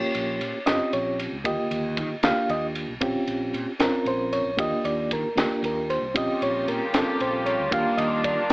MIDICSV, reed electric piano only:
0, 0, Header, 1, 2, 480
1, 0, Start_track
1, 0, Tempo, 522239
1, 1335, Time_signature, 6, 3, 24, 8
1, 7839, End_track
2, 0, Start_track
2, 0, Title_t, "Reed electric piano"
2, 0, Program_c, 0, 4
2, 0, Note_on_c, 0, 58, 72
2, 0, Note_on_c, 0, 61, 60
2, 0, Note_on_c, 0, 65, 70
2, 0, Note_on_c, 0, 67, 76
2, 0, Note_on_c, 0, 73, 76
2, 524, Note_off_c, 0, 58, 0
2, 526, Note_off_c, 0, 61, 0
2, 528, Note_off_c, 0, 65, 0
2, 529, Note_off_c, 0, 67, 0
2, 583, Note_off_c, 0, 73, 0
2, 606, Note_on_c, 0, 60, 59
2, 609, Note_on_c, 0, 75, 96
2, 611, Note_on_c, 0, 61, 59
2, 615, Note_on_c, 0, 65, 60
2, 622, Note_on_c, 0, 67, 66
2, 844, Note_off_c, 0, 75, 0
2, 857, Note_on_c, 0, 73, 66
2, 1088, Note_off_c, 0, 73, 0
2, 1245, Note_off_c, 0, 60, 0
2, 1248, Note_off_c, 0, 61, 0
2, 1249, Note_off_c, 0, 65, 0
2, 1253, Note_off_c, 0, 67, 0
2, 1326, Note_on_c, 0, 58, 76
2, 1332, Note_on_c, 0, 50, 70
2, 1338, Note_on_c, 0, 75, 77
2, 1341, Note_on_c, 0, 65, 67
2, 1344, Note_on_c, 0, 67, 87
2, 1965, Note_off_c, 0, 58, 0
2, 1968, Note_off_c, 0, 50, 0
2, 1973, Note_off_c, 0, 65, 0
2, 1974, Note_off_c, 0, 67, 0
2, 2020, Note_off_c, 0, 75, 0
2, 2048, Note_on_c, 0, 58, 66
2, 2056, Note_on_c, 0, 62, 55
2, 2059, Note_on_c, 0, 77, 94
2, 2060, Note_on_c, 0, 65, 59
2, 2065, Note_on_c, 0, 67, 71
2, 2290, Note_off_c, 0, 77, 0
2, 2302, Note_on_c, 0, 75, 79
2, 2444, Note_off_c, 0, 75, 0
2, 2686, Note_off_c, 0, 58, 0
2, 2690, Note_off_c, 0, 62, 0
2, 2692, Note_off_c, 0, 65, 0
2, 2694, Note_off_c, 0, 67, 0
2, 2766, Note_on_c, 0, 60, 90
2, 2772, Note_on_c, 0, 61, 89
2, 2775, Note_on_c, 0, 65, 83
2, 2781, Note_on_c, 0, 67, 94
2, 3405, Note_off_c, 0, 60, 0
2, 3408, Note_off_c, 0, 61, 0
2, 3410, Note_off_c, 0, 65, 0
2, 3413, Note_off_c, 0, 67, 0
2, 3488, Note_on_c, 0, 60, 81
2, 3492, Note_on_c, 0, 61, 74
2, 3501, Note_on_c, 0, 65, 70
2, 3501, Note_on_c, 0, 70, 93
2, 3745, Note_on_c, 0, 72, 77
2, 3973, Note_off_c, 0, 72, 0
2, 3977, Note_on_c, 0, 73, 82
2, 4127, Note_off_c, 0, 60, 0
2, 4129, Note_off_c, 0, 61, 0
2, 4133, Note_off_c, 0, 65, 0
2, 4133, Note_off_c, 0, 70, 0
2, 4202, Note_on_c, 0, 58, 80
2, 4207, Note_on_c, 0, 62, 71
2, 4209, Note_off_c, 0, 73, 0
2, 4214, Note_on_c, 0, 65, 71
2, 4216, Note_on_c, 0, 67, 76
2, 4229, Note_on_c, 0, 75, 96
2, 4455, Note_off_c, 0, 75, 0
2, 4457, Note_on_c, 0, 74, 80
2, 4689, Note_off_c, 0, 74, 0
2, 4716, Note_on_c, 0, 70, 72
2, 4844, Note_off_c, 0, 58, 0
2, 4846, Note_off_c, 0, 62, 0
2, 4850, Note_off_c, 0, 65, 0
2, 4851, Note_off_c, 0, 67, 0
2, 4924, Note_on_c, 0, 58, 66
2, 4930, Note_on_c, 0, 62, 64
2, 4933, Note_on_c, 0, 65, 60
2, 4940, Note_on_c, 0, 67, 71
2, 5153, Note_off_c, 0, 70, 0
2, 5197, Note_on_c, 0, 70, 71
2, 5419, Note_off_c, 0, 70, 0
2, 5422, Note_on_c, 0, 72, 74
2, 5565, Note_off_c, 0, 58, 0
2, 5568, Note_off_c, 0, 62, 0
2, 5569, Note_off_c, 0, 65, 0
2, 5573, Note_off_c, 0, 67, 0
2, 5648, Note_on_c, 0, 60, 72
2, 5648, Note_on_c, 0, 61, 69
2, 5652, Note_off_c, 0, 72, 0
2, 5654, Note_on_c, 0, 65, 71
2, 5659, Note_on_c, 0, 67, 79
2, 5675, Note_on_c, 0, 75, 85
2, 5898, Note_off_c, 0, 75, 0
2, 5908, Note_on_c, 0, 73, 83
2, 6135, Note_off_c, 0, 73, 0
2, 6145, Note_on_c, 0, 70, 62
2, 6287, Note_off_c, 0, 60, 0
2, 6287, Note_off_c, 0, 61, 0
2, 6290, Note_off_c, 0, 65, 0
2, 6292, Note_off_c, 0, 67, 0
2, 6374, Note_on_c, 0, 60, 65
2, 6375, Note_on_c, 0, 61, 60
2, 6377, Note_on_c, 0, 65, 56
2, 6385, Note_on_c, 0, 69, 74
2, 6587, Note_off_c, 0, 70, 0
2, 6632, Note_on_c, 0, 72, 72
2, 6857, Note_off_c, 0, 72, 0
2, 6857, Note_on_c, 0, 73, 78
2, 7010, Note_off_c, 0, 60, 0
2, 7010, Note_off_c, 0, 61, 0
2, 7012, Note_off_c, 0, 65, 0
2, 7015, Note_off_c, 0, 69, 0
2, 7088, Note_on_c, 0, 58, 81
2, 7089, Note_off_c, 0, 73, 0
2, 7092, Note_on_c, 0, 62, 72
2, 7099, Note_on_c, 0, 65, 67
2, 7104, Note_on_c, 0, 67, 80
2, 7110, Note_on_c, 0, 77, 92
2, 7329, Note_on_c, 0, 75, 84
2, 7336, Note_off_c, 0, 77, 0
2, 7566, Note_off_c, 0, 75, 0
2, 7578, Note_on_c, 0, 74, 86
2, 7727, Note_off_c, 0, 58, 0
2, 7729, Note_off_c, 0, 62, 0
2, 7733, Note_off_c, 0, 65, 0
2, 7735, Note_off_c, 0, 67, 0
2, 7810, Note_on_c, 0, 58, 73
2, 7839, Note_off_c, 0, 58, 0
2, 7839, Note_off_c, 0, 74, 0
2, 7839, End_track
0, 0, End_of_file